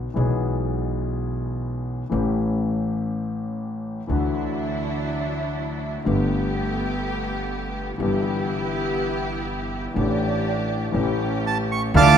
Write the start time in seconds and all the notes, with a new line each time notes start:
0.14 B1 B2 E3 G#3 B3
0.18 G#4
2.10 A1 A2 E3 A3 C#4
2.14 G4
4.07 D2 D3 E3 F#3 A3 D4 E4
4.11 F#4
6.04 G1 G2 D3 A3 B3 G4
7.98 G1 G2 E3 G3 B3 E4 G4
8.02 G4
9.94 A1 A2 E3 A3 D4 G4
9.98 G4
10.92 A1 A2 E3 A3 C#4 G4
11.47 A5
11.72 C#6
11.94 D2 D3 E3 F3 A3 D4 E4 F4 F5 A5 D6